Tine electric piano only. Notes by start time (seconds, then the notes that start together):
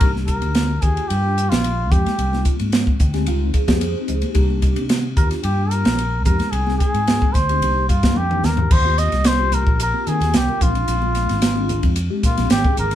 0.02 A#3 D4 D#4 G4
0.83 A#3 D4 F4 G4
1.92 G#3 C4 D#4 G4
2.32 G#3 C4 D#4 F4
3.01 G5
3.13 G#3 C4 D#4 G4 G#5
3.27 G3 C4 D#4 F4 F5
3.53 G3 C4 D#4 G#4 F5
3.68 C4 D#4 G4 G#4 C#5
3.81 C5
4.35 A#3 D4 D#4 G4
5.17 A#3 D4 F4 G4
6.25 G#3 C4 D#4 G4
6.67 G#3 C4 D#4 G#4
7.49 G#3 C4 D#4 G4
7.63 A#3 D4 D#4 G4
7.89 A#3 D4 D#4 F4
8.03 A#3 D4 D#4 G4
8.84 A#3 C4 F4 G4
9.38 A#3 C4 F4 G4
9.94 A#3 C4 F4 G4
10.47 A#3 C4 F4 A#4
10.60 G#3 C4 D4 F4
11.01 G#3 C4 D4 F4
11.55 G#3 C4 D4 F4
12.10 G#3 C4 D4 G4
12.65 G#3 C4 D4 G#4